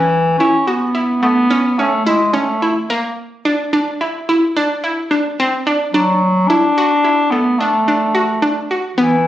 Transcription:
Already playing: bass clarinet E3, synth arpeggio sound C#4
0.39 bass clarinet C#4, synth arpeggio sound E4
0.67 bass clarinet B3, synth arpeggio sound F#4
0.95 synth arpeggio sound E4
1.22 synth arpeggio sound A3, bass clarinet B3
1.50 synth arpeggio sound C#4
1.78 bass clarinet A3, synth arpeggio sound C#4
2.06 bass clarinet G#3, synth arpeggio sound E4
2.33 bass clarinet A3, synth arpeggio sound C#4
2.62 synth arpeggio sound E4
2.90 synth arpeggio sound A#3
3.45 synth arpeggio sound D4
3.73 synth arpeggio sound D4
4.01 synth arpeggio sound E4
4.29 synth arpeggio sound E4
4.57 synth arpeggio sound D4
4.84 synth arpeggio sound E4
5.11 synth arpeggio sound D4
5.40 synth arpeggio sound C4
5.67 synth arpeggio sound D4
5.93 bass clarinet F#3, synth arpeggio sound D4
6.48 bass clarinet D4, synth arpeggio sound E4
6.78 synth arpeggio sound F#4
7.04 synth arpeggio sound E4
7.31 synth arpeggio sound A3, bass clarinet B3
7.59 bass clarinet A3, synth arpeggio sound D4
7.88 synth arpeggio sound D4
8.15 synth arpeggio sound F#4
8.42 synth arpeggio sound D4
8.71 synth arpeggio sound F#4
8.97 bass clarinet E3, synth arpeggio sound B3

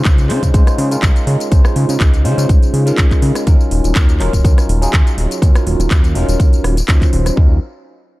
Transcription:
Already playing: tine electric piano G#3 C#4 D#4 F4 C5
0.05 analog synth bass C#2, kick, clap, closed hi-hat, tambourine
0.18 closed hi-hat, tambourine
0.29 analog synth bass C#3, tine electric piano G#3 C#4 D#4 F4 C5, clap, open hi-hat
0.43 analog synth bass C#3, kick, closed hi-hat, tambourine
0.54 analog synth bass C#2, kick, closed hi-hat, tambourine
0.67 cross-stick, closed hi-hat, tambourine
0.78 analog synth bass C#3, open hi-hat
0.91 tine electric piano G#3 C#4 D#4 F4 A#4, closed hi-hat, tambourine
1.02 analog synth bass C#2, kick, clap, closed hi-hat, tambourine
1.16 closed hi-hat, tambourine
1.27 analog synth bass C#3, open hi-hat
1.40 closed hi-hat, tambourine
1.51 analog synth bass C#2, tine electric piano G#3 C#4 D#4 F4 C5, kick, closed hi-hat, tambourine
1.65 cross-stick, tambourine
1.76 analog synth bass C#3, open hi-hat
1.89 analog synth bass C#3, closed hi-hat, tambourine
2.00 analog synth bass C#2, kick, clap, closed hi-hat, tambourine
2.14 closed hi-hat, tambourine
2.24 analog synth bass C#3, tine electric piano G#3 C#4 D#4 F4 C5, open hi-hat
2.38 analog synth bass C#3, closed hi-hat, tambourine
2.49 analog synth bass C#2, kick, closed hi-hat, tambourine
2.62 analog synth bass C#3, closed hi-hat, tambourine
2.73 analog synth bass C#3, open hi-hat
2.86 tine electric piano G#3 C#4 D#4 F4 A#4, closed hi-hat, tambourine
2.98 analog synth bass C#2, kick, clap, closed hi-hat, tambourine
3.11 kick, clap, closed hi-hat, tambourine
3.22 analog synth bass C#3, open hi-hat
3.35 cross-stick, closed hi-hat, tambourine
3.46 analog synth bass D#2, tine electric piano F#3 C#4 D#4 F4 A#4, kick, closed hi-hat, tambourine
3.61 tambourine
3.71 analog synth bass D#1, open hi-hat
3.84 analog synth bass D#1, closed hi-hat, tambourine
3.95 analog synth bass D#2, kick, clap, closed hi-hat, tambourine
4.09 closed hi-hat, tambourine
4.19 analog synth bass D#1, tine electric piano F#3 C#4 D#4 F4 A#4, clap, open hi-hat
4.33 analog synth bass D#1, kick, closed hi-hat, tambourine
4.44 analog synth bass D#2, kick, closed hi-hat, tambourine
4.58 cross-stick, closed hi-hat, tambourine
4.69 analog synth bass D#1, open hi-hat
4.81 tine electric piano F#3 C#4 D#4 F4 G#4, closed hi-hat, tambourine
4.93 analog synth bass D#2, kick, clap, closed hi-hat, tambourine
5.07 closed hi-hat, tambourine
5.17 analog synth bass D#1, open hi-hat
5.31 closed hi-hat, tambourine
5.42 analog synth bass D#2, tine electric piano F#3 C#4 D#4 F4 A#4, kick, closed hi-hat, tambourine
5.55 cross-stick, closed hi-hat, tambourine
5.66 analog synth bass D#1, open hi-hat
5.79 analog synth bass D#1, closed hi-hat, tambourine
5.91 analog synth bass D#2, kick, clap, closed hi-hat, tambourine
6.04 closed hi-hat, tambourine
6.15 analog synth bass D#1, tine electric piano F#3 C#4 D#4 F4 A#4, open hi-hat
6.28 analog synth bass D#1, closed hi-hat, tambourine
6.40 analog synth bass D#2, kick, closed hi-hat, tambourine
6.52 analog synth bass D#1, closed hi-hat, tambourine
6.64 analog synth bass D#1, cross-stick, open hi-hat
6.77 closed hi-hat, tambourine
6.88 analog synth bass D#2, tine electric piano F#3 C#4 D#4 F4 C5, kick, clap, closed hi-hat, tambourine
7.01 kick, clap, closed hi-hat, tambourine
7.13 analog synth bass D#1, open hi-hat
7.26 cross-stick, closed hi-hat, tambourine
7.36 analog synth bass D#2, tine electric piano F#3 C#4 D#4 F4 A#4, kick

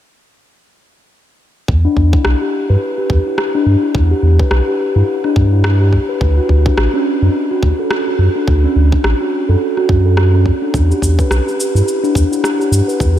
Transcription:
1.68 sub bass E2, kick
1.85 steel tongue drum D4
1.97 sub bass E2, kick
2.13 steel tongue drum E4, kick
2.25 sub bass B1, cross-stick
2.41 steel tongue drum G4
2.70 sub bass G2, steel tongue drum B4
2.98 steel tongue drum G4
3.10 sub bass E2, kick
3.27 steel tongue drum E4
3.38 cross-stick
3.55 steel tongue drum D4
3.66 sub bass G2
3.83 steel tongue drum E4
3.95 sub bass E2, kick
4.11 steel tongue drum G4
4.23 sub bass E2
4.39 steel tongue drum B4, kick
4.51 sub bass B1, cross-stick
4.68 steel tongue drum G4
4.96 sub bass G2, steel tongue drum E4
5.24 steel tongue drum D4, cross-stick
5.36 sub bass G2, kick
5.53 steel tongue drum E4
5.64 cross-stick
5.81 steel tongue drum G4
5.93 kick
6.09 steel tongue drum B4
6.21 sub bass D2, kick
6.37 steel tongue drum F#4
6.49 sub bass D2, kick
6.66 steel tongue drum D4, kick
6.78 sub bass A1, cross-stick
6.94 steel tongue drum C#4
7.22 sub bass F#2, steel tongue drum D4
7.51 steel tongue drum F#4
7.63 sub bass D2, kick
7.79 steel tongue drum A4
7.91 cross-stick
8.07 steel tongue drum F#4
8.19 sub bass F#2
8.36 steel tongue drum D4
8.47 sub bass D2, kick
8.64 steel tongue drum C#4
8.76 sub bass D2
8.92 steel tongue drum D4, kick
9.04 sub bass A1, cross-stick
9.20 steel tongue drum F#4
9.49 sub bass F#2, steel tongue drum A4
9.77 steel tongue drum F#4, cross-stick
9.89 sub bass F#2, steel tongue drum C#4, kick
10.06 steel tongue drum A4
10.17 cross-stick
10.34 steel tongue drum C#4
10.46 kick
10.62 steel tongue drum D4
10.74 sub bass E2, kick, cabasa
10.91 steel tongue drum G4, cabasa
11.02 sub bass E2, kick, cabasa
11.19 steel tongue drum B4, kick, cabasa
11.30 sub bass B1, cross-stick, cabasa
11.47 steel tongue drum G4, cabasa
11.60 cabasa
11.75 sub bass G2, steel tongue drum E4, cabasa
11.88 cabasa
12.04 steel tongue drum D4, cabasa
12.15 sub bass E2, kick, cabasa
12.32 steel tongue drum E4, cabasa
12.44 cross-stick, cabasa
12.60 steel tongue drum G4, cabasa
12.72 sub bass G2, cabasa
12.88 steel tongue drum B4, cabasa
13.00 sub bass E2, kick, cabasa

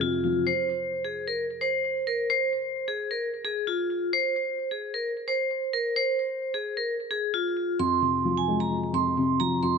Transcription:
Already playing: felt piano F2 F3 G#3
0.00 felt piano C3, vibraphone F4
0.24 felt piano F3
0.47 vibraphone C5
1.05 vibraphone G#4
1.28 vibraphone A#4
1.61 vibraphone C5
2.07 vibraphone A#4
2.30 vibraphone C5
2.88 vibraphone G#4
3.11 vibraphone A#4
3.45 vibraphone G#4
3.67 vibraphone F4
4.13 vibraphone C5
4.71 vibraphone G#4
4.94 vibraphone A#4
5.28 vibraphone C5
5.73 vibraphone A#4
5.96 vibraphone C5
6.54 vibraphone G#4
6.77 vibraphone A#4
7.11 vibraphone G#4
7.34 vibraphone F4
7.79 felt piano F2, vibraphone C6
8.02 felt piano C3
8.25 felt piano F3
8.37 vibraphone G#5
8.48 felt piano G#3
8.60 vibraphone A#5
8.93 felt piano F2, vibraphone C6
9.18 felt piano C3
9.40 felt piano F3, vibraphone A#5
9.63 felt piano F2, vibraphone C6

